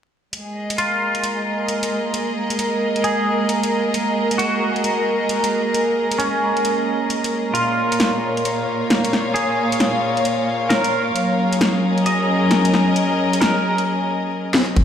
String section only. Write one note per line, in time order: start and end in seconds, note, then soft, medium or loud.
0.34 7.55 G#3 medium
0.40 8.68 G#4 medium
0.54 8.86 D#5 medium
0.76 9.02 A#4 medium
7.55 11.16 A#2 medium
7.66 12.55 C#5 medium
7.79 12.63 A#3 medium
7.79 11.81 F4 medium
8.52 12.63 F5 medium
11.15 14.76 F#3 medium
11.28 14.76 C#4 medium
11.28 14.76 A#4 medium
11.43 14.76 G#4 medium
11.90 14.76 D#5 medium